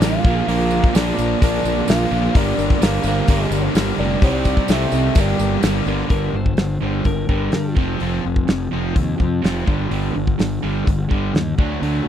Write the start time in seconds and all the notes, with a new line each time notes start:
Already playing: G3 D4 A#4
0.00 A1 G2 D3 G3 A#3 D4 F4 G4 A#4, snare, open hi-hat, tambourine
0.24 A#1 A#2 D3 F3 A#3 D4 F4 A#4, kick
0.47 A#1 A#2 D3 F3 A#3 D4 A#4, open hi-hat
0.71 D4 F4 A#4, tambourine
0.84 kick
0.95 A#1 A#2 D3 F3 A#3 D4 F4 A#4, snare, open hi-hat, tambourine
1.18 A#1 A#2 D3 F3 A#3 D4 F4 A#4, tambourine
1.22 A#4
1.42 A#1 A#2 D3 F3 A#3 D4 F4 A#4, kick, open hi-hat, tambourine
1.65 A#1 D4 F4 A#4, tambourine
1.88 A#1 A#2 D3 F3 A#3 D4 F4 A#4, snare, open hi-hat, tambourine
2.11 A#1 A#2 D3 F3 A#3 D4 F4 A#4
2.34 G1 G2 D3 G3 A#3 D4 G4 A#4, kick, open hi-hat
2.58 G1 D4 G4 A#4, tambourine
2.70 kick
2.81 G1 G2 D3 G3 A#3 D4 G4 A#4, snare, open hi-hat, tambourine
3.03 G1 G2 D3 G3 A#3 D4 G4 A#4 C5, tambourine
3.07 A#3
3.27 G1 G2 D3 G3 A#3 D4 G4 A#4, kick, open hi-hat, tambourine
3.51 G1 D4 G4 A#4, tambourine
3.75 G1 G2 D3 G3 A#3 D4 G4 A#4, snare, open hi-hat, tambourine
3.98 F1 G2 D3 G3 A#3 D4 A#4
4.22 C2 C3 G3 C4 D#4 G4 C5, kick, open hi-hat, tambourine
4.45 D#4 G4 C5, kick, tambourine
4.57 kick
4.68 C2 C3 G3 A3 C4 D#4 G4 C5, snare, open hi-hat, tambourine
4.92 C2 C3 G3 C4 D#4 G4 C5, tambourine
5.14 G1 G2 D3 G3 A#3 D4 G4 A#4, kick, open hi-hat, tambourine
5.19 G3
5.39 G1 D4 G4 A#4, tambourine
5.63 G1 G2 D3 G3 A#3 D4 G4 A#4, snare, open hi-hat, tambourine
5.86 G1 G2 D3 G3 A#3 D4 G4 A#4, tambourine
6.10 G1 G2 D3 G3 A#4, kick, open hi-hat
6.33 G1 G2 D3 C5
6.46 kick
6.57 G1 G2 D3, snare, open hi-hat
6.81 G1 G2 D3 G3
7.05 G1 G2 D3 A#4, kick, open hi-hat
7.29 G1 G2 D3 G3 A#4, kick
7.52 G2 D3, snare, open hi-hat
7.75 F1 F2 C3 F3, kick
7.79 C4 F4
8.00 F1 F2 C3 F3 C4 F4, open hi-hat
8.23 F1 F2 C3 F3 C4
8.36 kick
8.47 F1 F2 C3 F3 C4, snare, open hi-hat
8.71 F1 F2 C3 F3 C4 F4
8.94 D#2 F2 C3 F3 C4, kick, open hi-hat
9.18 F2 C3 F3 C4, kick
9.42 F1 F2 C3 F3 C4 F4, snare, open hi-hat
9.67 G1 G2 D3 G3, kick
9.91 G1 G2 D3 G3, open hi-hat
10.16 G1 G2 D3
10.27 kick
10.39 G1 G2 D3, snare, open hi-hat
10.63 G1 G2 D3 G3
10.87 G1 G2 D3, kick, open hi-hat
11.11 G1 G2 D3 G3, kick
11.34 D#2 G2 D3, snare, open hi-hat
11.58 D2 D3 F#3 A3 D4, kick
11.82 D2 D3 F#3 A3 D4, open hi-hat